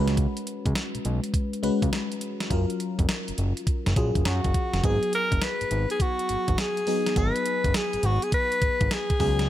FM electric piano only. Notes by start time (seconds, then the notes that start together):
Already playing: G#3 C#4 F#4 B4
1.63 G#3 C#4 F#4 B4
2.50 F#3 C#4 F4 A#4
3.96 F#3 C#4 F4 G#4
4.83 F#3 B3 D#4 G#4
6.87 F#3 B3 D#4 G#4
7.16 F#3 B3 D#4 G#4
9.20 F#3 B3 C#4 G#4